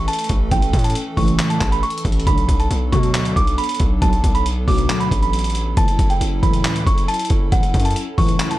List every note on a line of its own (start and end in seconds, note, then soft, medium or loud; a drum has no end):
0.00 2.23 E3 medium
0.00 2.23 A3 medium
0.00 2.23 C#4 medium
0.00 5.73 A4 medium
0.08 0.26 A5 medium
0.08 closed hi-hat medium
0.13 closed hi-hat medium
0.19 closed hi-hat medium
0.24 closed hi-hat medium
0.29 0.51 A1 loud
0.29 kick loud
0.29 closed hi-hat medium
0.51 0.73 A1 loud
0.51 0.61 C#2 medium
0.51 0.61 A2 medium
0.51 0.61 E3 medium
0.51 0.82 G5 loud
0.51 kick loud
0.51 closed hi-hat medium
0.62 closed hi-hat medium
0.73 0.94 A2 loud
0.73 kick loud
0.73 closed hi-hat medium
0.79 closed hi-hat medium
0.84 0.93 A5 medium
0.84 closed hi-hat medium
0.90 closed hi-hat medium
0.95 closed hi-hat medium
1.17 1.38 A1 loud
1.17 1.59 C#2 medium
1.17 1.59 A2 loud
1.17 1.59 E3 loud
1.17 1.48 C#6 medium
1.17 kick medium
1.17 open hi-hat medium
1.28 closed hi-hat medium
1.39 clap loud
1.39 closed hi-hat medium
1.50 1.68 A5 medium
1.50 closed hi-hat medium
1.61 1.82 A1 loud
1.61 kick loud
1.61 clap loud
1.61 closed hi-hat medium
1.72 1.81 B5 medium
1.72 closed hi-hat medium
1.83 2.01 C#6 loud
1.83 closed hi-hat soft
1.90 closed hi-hat medium
1.98 closed hi-hat medium
2.05 2.26 A1 loud
2.05 kick loud
2.05 closed hi-hat medium
2.12 closed hi-hat medium
2.20 closed hi-hat medium
2.27 2.48 B1 loud
2.27 2.36 B1 medium
2.27 2.36 A2 medium
2.27 2.36 D3 loud
2.27 8.59 F#3 medium
2.27 5.74 B3 medium
2.27 5.74 D4 medium
2.27 2.58 B5 loud
2.27 kick loud
2.27 closed hi-hat medium
2.38 closed hi-hat medium
2.49 2.70 B1 loud
2.49 kick loud
2.49 closed hi-hat medium
2.60 2.69 A5 medium
2.60 closed hi-hat soft
2.71 2.92 B1 loud
2.71 closed hi-hat medium
2.92 3.34 D2 loud
2.92 3.34 B2 medium
2.92 3.35 B2 loud
2.92 3.34 F#3 loud
2.92 3.34 C#6 medium
2.92 kick medium
2.92 closed hi-hat medium
3.03 closed hi-hat medium
3.14 clap loud
3.14 closed hi-hat medium
3.25 closed hi-hat medium
3.36 3.57 B1 loud
3.36 3.54 D6 medium
3.36 kick loud
3.36 closed hi-hat medium
3.47 closed hi-hat medium
3.58 3.76 B5 medium
3.58 closed hi-hat medium
3.64 closed hi-hat medium
3.69 closed hi-hat medium
3.75 closed hi-hat medium
3.80 4.01 B1 loud
3.80 kick loud
3.80 closed hi-hat medium
4.02 4.23 B1 loud
4.02 4.11 D2 medium
4.02 4.11 B2 medium
4.02 4.11 F#3 medium
4.02 4.33 A5 loud
4.02 kick loud
4.02 closed hi-hat medium
4.13 closed hi-hat medium
4.24 4.66 B1 loud
4.24 kick loud
4.24 closed hi-hat medium
4.35 4.44 B5 medium
4.35 closed hi-hat soft
4.46 closed hi-hat medium
4.68 4.89 B1 loud
4.68 5.09 D2 loud
4.68 5.09 B2 loud
4.68 5.09 F#3 loud
4.68 4.98 D6 medium
4.68 kick medium
4.68 open hi-hat medium
4.78 closed hi-hat medium
4.89 clap loud
4.89 closed hi-hat medium
5.00 5.19 B5 medium
5.00 closed hi-hat medium
5.11 5.74 A1 loud
5.11 kick loud
5.11 closed hi-hat medium
5.22 5.74 B5 medium
5.22 closed hi-hat medium
5.33 closed hi-hat medium
5.39 closed hi-hat medium
5.44 closed hi-hat medium
5.50 closed hi-hat medium
5.55 closed hi-hat medium
5.77 5.98 F#1 loud
5.77 5.86 C#2 medium
5.77 5.86 A2 medium
5.77 5.86 E3 medium
5.77 8.59 C#4 medium
5.77 8.59 E4 medium
5.77 8.59 A4 medium
5.77 6.08 A5 loud
5.77 kick loud
5.77 closed hi-hat medium
5.88 closed hi-hat medium
5.99 6.20 F#1 loud
5.99 kick loud
5.99 closed hi-hat medium
6.10 6.19 G5 medium
6.10 closed hi-hat soft
6.21 6.42 F#1 loud
6.21 closed hi-hat medium
6.43 6.64 F#1 loud
6.43 6.84 C#2 loud
6.43 6.84 A2 loud
6.43 6.84 E3 loud
6.43 6.84 B5 medium
6.43 kick medium
6.43 closed hi-hat medium
6.53 closed hi-hat medium
6.64 clap loud
6.64 closed hi-hat medium
6.76 closed hi-hat medium
6.87 7.08 F#1 loud
6.87 7.05 C#6 medium
6.87 kick loud
6.87 closed hi-hat medium
6.98 closed hi-hat medium
7.08 7.26 A5 loud
7.08 closed hi-hat medium
7.14 closed hi-hat medium
7.19 closed hi-hat medium
7.25 closed hi-hat medium
7.30 7.51 F#1 loud
7.30 kick loud
7.30 closed hi-hat medium
7.52 7.73 F#1 loud
7.52 7.62 C#2 medium
7.52 7.62 A2 medium
7.52 7.62 E3 medium
7.52 7.83 F#5 loud
7.52 kick loud
7.52 closed hi-hat medium
7.63 closed hi-hat medium
7.74 7.95 F#2 loud
7.74 kick loud
7.74 closed hi-hat medium
7.80 closed hi-hat medium
7.85 7.94 A5 medium
7.85 closed hi-hat medium
7.91 closed hi-hat medium
7.96 closed hi-hat medium
8.18 8.39 F#1 loud
8.18 8.59 C#2 loud
8.18 8.59 A2 loud
8.18 8.59 E3 loud
8.18 8.49 C#6 medium
8.18 kick medium
8.18 open hi-hat medium
8.29 closed hi-hat medium
8.39 clap loud
8.39 closed hi-hat medium
8.51 8.59 A5 medium
8.51 closed hi-hat medium